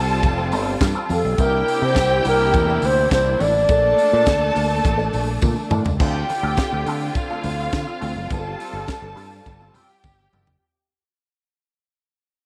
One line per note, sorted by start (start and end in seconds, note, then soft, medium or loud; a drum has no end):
0.00 0.25 C2 loud
0.00 0.13 G3 medium
0.00 1.37 G3 medium
0.00 1.37 C4 medium
0.00 1.34 F4 medium
0.00 1.06 A4 loud
0.00 1.06 A5 loud
0.08 muted clean electric guitar stroke soft
0.08 tambourine soft
0.23 0.52 F1 loud
0.23 muted clean electric guitar stroke medium
0.23 kick loud
0.23 closed hi-hat medium
0.23 tambourine medium
0.23 muted conga medium
0.37 0.50 G3 medium
0.37 0.51 C4 medium
0.37 0.51 F4 medium
0.37 0.52 A4 medium
0.37 tambourine soft
0.51 0.75 G1 loud
0.51 0.67 G3 medium
0.51 0.67 C4 medium
0.51 0.67 F4 medium
0.51 0.66 A4 medium
0.51 open hi-hat medium
0.51 tambourine medium
0.51 muted conga soft
0.67 muted clean electric guitar stroke soft
0.81 0.92 G2 loud
0.81 muted clean electric guitar stroke medium
0.81 kick loud
0.81 snare loud
0.81 closed hi-hat medium
0.81 tambourine loud
0.81 high conga medium
0.95 1.09 G3 medium
0.95 1.10 C4 medium
0.95 1.10 F4 medium
0.95 1.11 A4 medium
0.95 tambourine soft
1.09 1.21 F2 loud
1.09 1.25 G3 medium
1.09 1.24 C4 medium
1.09 1.24 F4 medium
1.09 1.23 A4 medium
1.09 1.42 A4 medium
1.09 open hi-hat medium
1.09 tambourine medium
1.09 high conga medium
1.23 1.36 B1 loud
1.23 muted clean electric guitar stroke soft
1.23 tambourine soft
1.23 high conga medium
1.38 1.61 C2 loud
1.38 3.67 C3 medium
1.38 1.58 G3 medium
1.38 5.97 A#3 medium
1.38 1.53 D4 medium
1.38 5.97 D4 medium
1.38 1.53 E4 loud
1.38 3.68 E4 medium
1.38 3.37 G4 loud
1.38 1.86 A#4 loud
1.38 1.53 A#4 medium
1.38 3.37 G5 loud
1.38 kick loud
1.38 closed hi-hat medium
1.38 tambourine medium
1.68 muted clean electric guitar stroke soft
1.68 open hi-hat medium
1.68 tambourine medium
1.82 1.93 C3 loud
1.82 1.97 G3 medium
1.82 1.97 D4 medium
1.82 1.97 E4 medium
1.82 1.97 A#4 medium
1.82 2.26 C5 loud
1.95 2.19 C2 loud
1.95 kick loud
1.95 snare loud
1.95 closed hi-hat medium
1.95 tambourine loud
1.95 high conga medium
2.11 muted clean electric guitar stroke medium
2.25 2.54 C2 medium
2.25 2.44 G3 medium
2.25 2.38 D4 medium
2.25 2.38 E4 medium
2.25 2.37 A#4 medium
2.25 2.87 A#4 loud
2.25 open hi-hat medium
2.25 tambourine medium
2.41 tambourine soft
2.53 2.77 E2 loud
2.53 muted clean electric guitar stroke medium
2.53 kick loud
2.53 closed hi-hat medium
2.53 tambourine medium
2.53 muted conga medium
2.67 2.82 G3 medium
2.67 2.82 D4 medium
2.67 2.82 E4 loud
2.67 2.82 A#4 medium
2.67 tambourine soft
2.82 3.06 D2 loud
2.82 3.12 C5 loud
2.82 open hi-hat medium
2.82 tambourine medium
2.82 muted conga medium
2.96 muted clean electric guitar stroke soft
3.11 3.34 C2 loud
3.11 3.42 C5 loud
3.11 kick loud
3.11 snare loud
3.11 closed hi-hat medium
3.11 tambourine loud
3.11 high conga medium
3.25 muted clean electric guitar stroke soft
3.39 3.64 A1 loud
3.39 3.60 G3 medium
3.39 3.54 D4 loud
3.39 3.54 E4 medium
3.39 3.53 A#4 medium
3.39 5.14 D5 loud
3.39 open hi-hat medium
3.39 tambourine medium
3.39 high conga medium
3.54 muted clean electric guitar stroke medium
3.54 tambourine soft
3.54 high conga medium
3.68 3.92 A#1 loud
3.68 3.88 F3 medium
3.68 5.97 A3 medium
3.68 3.88 A#3 medium
3.68 3.89 D4 medium
3.68 3.89 A4 loud
3.68 5.68 A4 medium
3.68 5.68 A5 loud
3.68 kick loud
3.68 closed hi-hat medium
3.68 tambourine medium
3.98 4.12 F3 medium
3.98 4.11 A#3 medium
3.98 4.11 D4 medium
3.98 4.11 A4 medium
3.98 open hi-hat medium
3.98 tambourine medium
4.12 4.24 A#2 loud
4.12 4.26 F3 medium
4.12 4.26 A#3 medium
4.12 4.26 D4 medium
4.12 4.26 A4 medium
4.26 4.50 D2 loud
4.26 kick loud
4.26 snare loud
4.26 closed hi-hat medium
4.26 tambourine loud
4.26 high conga medium
4.41 muted clean electric guitar stroke soft
4.54 4.79 D2 medium
4.54 4.74 F3 medium
4.54 4.70 A#3 medium
4.54 4.69 D4 medium
4.54 4.68 A4 loud
4.54 open hi-hat medium
4.54 tambourine medium
4.69 muted clean electric guitar stroke soft
4.69 tambourine soft
4.84 5.08 A1 loud
4.84 muted clean electric guitar stroke soft
4.84 kick loud
4.84 closed hi-hat medium
4.84 tambourine medium
4.84 muted conga medium
4.98 5.12 F3 medium
4.98 5.13 A#3 medium
4.98 5.13 D4 medium
4.98 5.13 A4 medium
4.98 tambourine soft
5.13 5.37 A#1 loud
5.13 5.28 F3 medium
5.13 5.27 A#3 medium
5.13 5.27 D4 medium
5.13 5.26 A4 medium
5.13 open hi-hat medium
5.13 tambourine medium
5.13 muted conga medium
5.27 muted clean electric guitar stroke medium
5.41 5.54 A#2 loud
5.41 muted clean electric guitar stroke soft
5.41 kick loud
5.41 high tom medium
5.41 tambourine loud
5.41 high conga loud
5.56 muted clean electric guitar stroke medium
5.56 tambourine soft
5.70 5.82 A2 loud
5.70 5.90 F3 medium
5.70 5.85 A#3 loud
5.70 5.85 D4 loud
5.70 5.84 A4 medium
5.70 mid tom medium
5.70 tambourine medium
5.70 high conga medium
5.84 5.97 C#2 loud
5.84 muted clean electric guitar stroke medium
5.84 floor tom loud
5.84 tambourine soft
5.99 6.23 D2 loud
5.99 8.28 D3 medium
5.99 6.19 A3 medium
5.99 10.57 C4 medium
5.99 6.16 C4 medium
5.99 10.57 F4 medium
5.99 6.15 F4 medium
5.99 7.13 G4 medium
5.99 6.14 A4 medium
5.99 7.13 G5 medium
5.99 kick loud
5.99 crash loud
5.99 tambourine medium
6.15 muted clean electric guitar stroke soft
6.29 muted clean electric guitar stroke soft
6.29 open hi-hat medium
6.29 tambourine medium
6.29 muted conga soft
6.43 6.55 D2 loud
6.43 6.59 A3 medium
6.43 6.59 C4 medium
6.43 6.59 F4 medium
6.43 6.58 A4 medium
6.57 kick loud
6.57 snare loud
6.57 closed hi-hat medium
6.57 tambourine loud
6.57 high conga medium
6.72 6.84 D2 loud
6.72 muted clean electric guitar stroke medium
6.86 7.09 D3 loud
6.86 7.06 A3 medium
6.86 7.02 C4 loud
6.86 7.01 F4 medium
6.86 7.00 A4 loud
6.86 open hi-hat medium
6.86 tambourine medium
7.01 muted clean electric guitar stroke soft
7.01 tambourine soft
7.15 8.28 F4 medium
7.15 8.28 F5 medium
7.15 muted clean electric guitar stroke medium
7.15 kick loud
7.15 closed hi-hat medium
7.15 tambourine medium
7.15 muted conga medium
7.30 7.44 A3 medium
7.30 7.44 C4 medium
7.30 7.45 F4 medium
7.30 7.44 A4 medium
7.30 tambourine soft
7.44 7.67 D2 medium
7.44 muted clean electric guitar stroke soft
7.44 open hi-hat medium
7.44 tambourine medium
7.44 muted conga medium
7.44 low conga medium
7.60 muted clean electric guitar stroke medium
7.73 7.84 D3 loud
7.73 kick loud
7.73 snare loud
7.73 closed hi-hat medium
7.73 tambourine loud
7.73 high conga medium
7.87 muted clean electric guitar stroke soft
7.87 tambourine soft
8.01 8.13 D2 loud
8.01 8.21 A3 medium
8.01 8.16 C4 medium
8.01 8.16 F4 medium
8.01 8.15 A4 medium
8.01 open hi-hat medium
8.01 tambourine medium
8.01 high conga medium
8.16 8.27 F#1 loud
8.16 muted clean electric guitar stroke medium
8.16 tambourine soft
8.30 8.54 G1 loud
8.30 8.51 G3 medium
8.30 10.59 G3 medium
8.30 8.51 C4 medium
8.30 8.51 F4 medium
8.30 9.72 A4 medium
8.30 8.51 A4 loud
8.30 9.72 A5 medium
8.30 kick loud
8.30 closed hi-hat medium
8.30 tambourine medium
8.60 8.75 G3 medium
8.60 8.75 C4 medium
8.60 8.75 F4 medium
8.60 8.74 A4 medium
8.60 open hi-hat medium
8.60 tambourine medium
8.73 8.85 G1 loud
8.73 8.88 G3 medium
8.73 8.88 C4 medium
8.73 8.88 F4 medium
8.73 8.88 A4 medium
8.88 muted clean electric guitar stroke soft
8.88 kick loud
8.88 snare loud
8.88 closed hi-hat medium
8.88 tambourine loud
8.88 high conga medium
9.02 9.14 G1 loud
9.02 muted clean electric guitar stroke soft
9.16 9.39 G2 loud
9.16 9.36 G3 medium
9.16 9.32 C4 medium
9.16 9.31 F4 medium
9.16 9.30 A4 loud
9.16 open hi-hat medium
9.16 tambourine medium
9.32 muted clean electric guitar stroke soft
9.32 tambourine soft
9.46 9.69 G1 loud
9.46 muted clean electric guitar stroke soft
9.46 kick loud
9.46 closed hi-hat medium
9.46 tambourine medium
9.46 muted conga medium
9.60 9.74 G3 medium
9.60 9.75 C4 medium
9.60 9.75 F4 medium
9.60 9.75 A4 medium
9.60 tambourine soft
9.74 9.90 G3 medium
9.74 9.89 C4 medium
9.74 9.89 F4 medium
9.74 10.60 G4 medium
9.74 9.88 A4 medium
9.74 10.60 G5 medium
9.74 open hi-hat medium
9.74 tambourine medium
9.74 muted conga medium
9.74 low conga medium
9.89 muted clean electric guitar stroke soft
10.03 10.27 G1 loud
10.03 muted clean electric guitar stroke soft
10.03 kick loud
10.03 high tom medium
10.03 tambourine medium
10.03 high conga medium
10.19 muted clean electric guitar stroke soft
10.33 10.55 F#1 loud
10.33 10.52 G3 medium
10.33 10.48 C4 medium
10.33 10.48 F4 medium
10.33 10.47 A4 medium
10.33 mid tom medium
10.33 tambourine medium
10.33 high conga medium
10.47 floor tom medium
10.47 tambourine soft